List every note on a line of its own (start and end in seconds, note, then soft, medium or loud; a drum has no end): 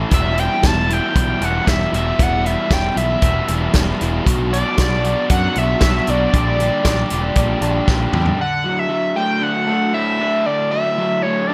0.00 0.10 E3 medium
0.00 0.10 C#4 medium
0.00 0.12 E4 medium
0.10 0.48 E1 medium
0.10 0.34 E2 medium
0.10 0.34 B2 medium
0.10 0.36 E3 medium
0.10 0.36 G3 medium
0.10 0.37 B3 medium
0.10 0.38 E4 medium
0.10 kick loud
0.10 closed hi-hat medium
0.14 0.41 E5 medium
0.35 0.60 E2 medium
0.35 0.60 B2 medium
0.35 0.62 E3 medium
0.35 0.62 G3 medium
0.35 0.63 B3 medium
0.35 0.63 E4 medium
0.35 closed hi-hat medium
0.39 0.68 G5 loud
0.61 0.99 E1 medium
0.61 0.86 E2 medium
0.61 0.86 B2 medium
0.61 0.87 E3 medium
0.61 0.88 G3 medium
0.61 0.88 B3 medium
0.61 0.89 E4 medium
0.61 kick medium
0.61 snare medium
0.61 closed hi-hat medium
0.66 0.94 A5 loud
0.86 1.12 E2 medium
0.86 1.13 B2 medium
0.86 1.14 E3 medium
0.86 1.14 G3 medium
0.86 1.15 B3 medium
0.86 1.15 E4 medium
0.90 1.46 G5 loud
0.90 closed hi-hat soft
1.13 1.33 B1 medium
1.13 1.38 E2 medium
1.13 1.39 B2 medium
1.13 1.39 E3 medium
1.13 1.40 G3 medium
1.13 1.41 B3 medium
1.13 1.41 E4 medium
1.13 kick loud
1.13 closed hi-hat medium
1.39 1.59 E1 medium
1.39 1.64 E2 medium
1.39 1.64 B2 medium
1.39 1.65 E3 medium
1.39 1.65 G3 medium
1.39 1.67 B3 medium
1.39 1.67 E4 medium
1.39 closed hi-hat medium
1.44 1.70 F#5 medium
1.65 1.85 E1 medium
1.65 1.89 E2 medium
1.65 1.90 B2 medium
1.65 1.91 E3 medium
1.65 1.91 G3 medium
1.65 1.93 B3 medium
1.65 1.92 E4 medium
1.65 1.94 E5 medium
1.65 kick loud
1.65 snare loud
1.65 closed hi-hat medium
1.90 2.11 E1 medium
1.90 2.16 E2 medium
1.90 2.17 B2 medium
1.90 2.18 E3 medium
1.90 2.18 G3 medium
1.90 2.19 B3 medium
1.90 2.19 E4 medium
1.90 closed hi-hat medium
1.96 2.24 E5 medium
2.18 2.55 E1 medium
2.18 2.42 E2 medium
2.18 2.43 B2 medium
2.18 2.43 E3 medium
2.18 2.44 G3 medium
2.18 2.45 B3 medium
2.18 2.45 E4 loud
2.18 kick loud
2.18 closed hi-hat medium
2.22 2.47 F#5 medium
2.43 2.67 E2 medium
2.43 2.68 B2 medium
2.43 2.69 E3 medium
2.43 2.69 G3 medium
2.43 2.71 B3 medium
2.43 2.71 E4 medium
2.43 2.74 E5 medium
2.43 closed hi-hat medium
2.69 2.88 E1 medium
2.69 2.93 E2 medium
2.69 2.94 B2 medium
2.69 2.95 E3 medium
2.69 2.95 G3 medium
2.69 2.96 B3 medium
2.69 2.96 E4 medium
2.69 kick loud
2.69 snare medium
2.69 closed hi-hat medium
2.73 2.97 G5 medium
2.95 3.14 B1 medium
2.95 3.20 E2 medium
2.95 3.21 B2 medium
2.95 3.21 E3 medium
2.95 3.22 G3 medium
2.95 3.22 B3 medium
2.95 3.23 E4 medium
2.95 3.71 E5 medium
2.95 closed hi-hat medium
3.21 3.40 E1 medium
3.21 3.46 E2 medium
3.21 3.47 B2 medium
3.21 3.47 E3 medium
3.21 3.48 G3 medium
3.21 3.49 B3 medium
3.21 3.49 E4 medium
3.21 kick medium
3.21 closed hi-hat medium
3.47 3.67 E1 medium
3.47 3.71 E2 medium
3.47 3.72 B2 medium
3.47 3.72 E3 medium
3.47 3.73 G3 medium
3.47 3.74 B3 medium
3.47 3.75 E4 medium
3.47 closed hi-hat medium
3.73 3.92 E1 medium
3.73 3.97 E2 medium
3.73 3.98 B2 medium
3.73 3.99 E3 medium
3.73 4.00 G3 medium
3.73 4.00 B3 medium
3.73 4.00 E4 medium
3.73 kick loud
3.73 snare loud
3.73 closed hi-hat medium
3.98 4.19 E1 medium
3.98 4.24 E2 medium
3.98 4.22 B2 medium
3.98 4.24 E3 medium
3.98 4.24 G3 medium
3.98 4.24 B3 medium
3.98 4.25 E4 medium
3.98 closed hi-hat medium
4.24 4.62 B1 medium
4.24 4.49 B2 medium
4.24 4.49 F#3 medium
4.24 4.50 B3 medium
4.24 4.51 D4 medium
4.24 4.51 F#4 medium
4.24 kick loud
4.24 closed hi-hat medium
4.50 4.75 B2 medium
4.50 4.75 F#3 medium
4.50 4.76 B3 medium
4.50 4.77 D4 medium
4.50 4.77 F#4 medium
4.50 5.26 D5 loud
4.50 closed hi-hat medium
4.76 5.14 B1 medium
4.76 5.01 B2 medium
4.76 5.02 F#3 medium
4.76 5.03 B3 medium
4.76 5.04 D4 medium
4.76 5.04 F#4 medium
4.76 kick loud
4.76 snare medium
4.76 closed hi-hat medium
5.03 5.27 B2 medium
5.03 5.28 F#3 medium
5.03 5.29 B3 medium
5.03 5.30 D4 medium
5.03 5.30 F#4 medium
5.03 closed hi-hat medium
5.29 5.48 F#2 medium
5.29 5.54 B2 medium
5.29 5.55 F#3 medium
5.29 5.55 B3 medium
5.29 5.56 D4 loud
5.29 5.56 F#4 medium
5.29 5.59 F#5 loud
5.29 kick loud
5.29 closed hi-hat medium
5.55 5.74 B1 medium
5.55 5.80 B2 medium
5.55 5.81 F#3 medium
5.55 5.82 B3 medium
5.55 5.83 D4 medium
5.55 5.82 F#4 medium
5.55 6.11 E5 loud
5.55 closed hi-hat medium
5.81 5.99 B1 medium
5.81 6.06 B2 medium
5.81 6.07 F#3 medium
5.81 6.07 B3 medium
5.81 6.09 D4 medium
5.81 6.08 F#4 medium
5.81 kick loud
5.81 snare loud
5.81 closed hi-hat medium
6.07 6.26 B1 medium
6.07 6.32 B2 medium
6.07 6.32 F#3 medium
6.07 6.32 B3 medium
6.07 6.34 D4 medium
6.07 6.33 F#4 medium
6.07 7.89 D5 medium
6.07 closed hi-hat medium
6.32 6.69 A#1 medium
6.32 6.57 A#2 medium
6.32 6.58 D3 medium
6.32 6.58 G3 medium
6.32 6.59 D4 loud
6.32 6.60 G4 loud
6.32 kick loud
6.32 closed hi-hat medium
6.58 6.83 A#2 medium
6.58 6.83 D3 medium
6.58 6.84 G3 medium
6.58 6.85 D4 medium
6.58 6.85 G4 medium
6.58 closed hi-hat medium
6.84 7.03 A#1 medium
6.84 7.09 A#2 medium
6.84 7.09 D3 medium
6.84 7.10 G3 medium
6.84 7.10 D4 medium
6.84 7.11 G4 medium
6.84 kick medium
6.84 snare loud
6.84 closed hi-hat medium
7.10 7.29 E1 medium
7.10 7.33 A#2 medium
7.10 7.34 D3 medium
7.10 7.35 G3 medium
7.10 7.36 D4 medium
7.10 7.36 G4 medium
7.10 closed hi-hat medium
7.35 7.54 A#1 medium
7.35 7.60 A#2 medium
7.35 7.60 D3 medium
7.35 7.61 G3 medium
7.35 7.61 D4 medium
7.35 7.62 G4 medium
7.35 kick loud
7.35 closed hi-hat medium
7.61 7.79 A#1 medium
7.61 7.86 A#2 medium
7.61 7.87 D3 medium
7.61 7.87 G3 medium
7.61 7.88 D4 medium
7.61 7.88 G4 medium
7.61 closed hi-hat medium
7.87 8.06 A#1 medium
7.87 8.11 A#2 medium
7.87 8.12 D3 medium
7.87 8.12 G3 medium
7.87 8.13 D4 medium
7.87 8.13 G4 medium
7.87 kick loud
7.87 snare medium
8.12 8.31 E2 medium
8.12 8.37 A#2 medium
8.12 8.37 D3 medium
8.12 8.38 G3 medium
8.12 8.38 D4 medium
8.12 8.39 G4 medium
8.12 mid tom medium
8.26 floor tom medium
8.38 9.68 D3 medium
8.38 8.80 F#5 loud
8.65 8.88 F#3 medium
8.79 9.16 E5 loud
8.89 10.19 F#3 medium
9.16 9.67 A3 medium
9.16 9.44 G5 medium
9.41 10.19 D4 medium
9.41 9.94 F#5 loud
9.67 11.23 A3 medium
9.94 11.53 E4 medium
9.94 10.47 E5 loud
10.20 11.48 D4 medium
10.46 11.54 D3 medium
10.46 10.71 D5 medium
10.71 10.97 F#3 medium
10.71 11.24 E5 loud
10.98 11.54 F#3 medium
11.22 11.54 A3 medium
11.22 11.48 C#5 medium
11.47 11.54 D4 medium
11.47 11.54 D5 medium